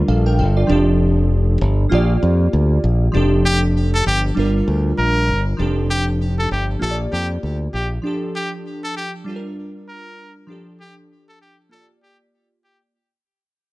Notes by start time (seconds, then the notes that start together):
Already playing: G3 D4 F4 A#4
0.08 A#1 A4 F5
0.26 A#4 G5
0.39 G1 A4 F5
0.57 F4 D5
0.67 F1 F3 D4 G4
0.72 A4
1.61 G1
1.89 A#1 A#3 F4 G4
1.94 D5
2.23 F2
2.53 D2
2.84 A#1
3.12 F1 F3 D4 G4
3.17 A4
3.46 G4
3.94 A4
4.06 G1 G4
4.34 G1 G3 D4 F4
4.39 A#4
4.68 D2
4.98 A#1 A#4
5.29 G1
5.57 F1 F3 D4 G4
5.62 A4
5.91 G4
6.39 A4
6.51 G1 G4
6.79 A#1 A#3 F4 G4 A4
6.84 C#5
6.91 D5
7.12 F2 G4
7.43 D2
7.74 A#1 G4
8.02 F3 D4 G4
8.07 A4
8.36 G4
8.84 A4
8.97 G4
9.24 G3 D4 F4
9.29 A4
9.36 A#4
9.89 A#4
10.47 F3 D4 G4
10.52 A4
10.81 G4
11.29 A4
11.42 G4
11.69 A#3 F4 G4 A4
11.74 D5
12.03 G4
12.64 G4